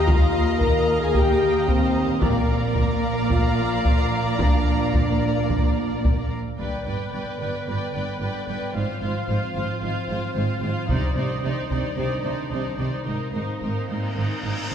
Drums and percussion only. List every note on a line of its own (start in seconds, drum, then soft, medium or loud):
0.07 taiko medium
0.61 taiko medium
1.15 taiko medium
1.68 taiko medium
2.22 taiko medium
2.75 taiko medium
3.31 taiko medium
3.85 taiko medium
4.39 taiko medium
4.94 taiko medium
5.50 taiko medium
6.05 taiko medium
6.60 taiko soft
10.90 taiko medium
11.71 taiko soft